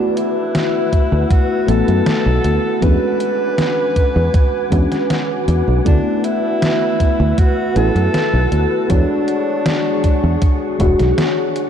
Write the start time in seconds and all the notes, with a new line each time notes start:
Already playing: A3 B3 D4 E4 F#4 B4 F#5 E6
0.17 E4, closed hi-hat
0.55 snare, closed hi-hat
0.93 kick, closed hi-hat
1.12 D2
1.31 F#4, kick, closed hi-hat
1.67 A1 A3 B3 E4 F#4 A4, closed hi-hat
1.88 F#2, closed hi-hat
2.06 snare, closed hi-hat
2.26 B1
2.44 D2, closed hi-hat
2.81 E2 G#3 C#4 D4 F#4 B4 F#5 G#5 D6, kick, closed hi-hat
3.20 closed hi-hat
3.58 snare, closed hi-hat
3.96 kick, closed hi-hat
4.16 E2
4.34 kick, closed hi-hat
4.70 E2 G#3 C#4 D4 F#4, kick, closed hi-hat
4.92 snare, closed hi-hat
5.10 snare, closed hi-hat
5.48 E2, closed hi-hat
5.68 B1
5.85 D2 A3 B3 D4 E4 F#4 B4 E6, kick, closed hi-hat
6.24 E4, closed hi-hat
6.62 snare, closed hi-hat
7.00 kick, closed hi-hat
7.20 D2
7.38 F#4, kick, closed hi-hat
7.75 A1 A3 B3 E4 F#4 A4, closed hi-hat
7.95 F#2, closed hi-hat
8.14 snare, closed hi-hat
8.33 B1
8.52 D2, closed hi-hat
8.89 E2 G#3 D4 F#4 G#4 C#5 C#6, kick, closed hi-hat
9.28 closed hi-hat
9.66 snare, closed hi-hat
10.04 kick, closed hi-hat
10.24 E2
10.42 kick, closed hi-hat
10.79 E1 G#3 D4 F#4 C#5, kick, closed hi-hat
10.99 B1, snare, closed hi-hat
11.18 snare, closed hi-hat
11.56 closed hi-hat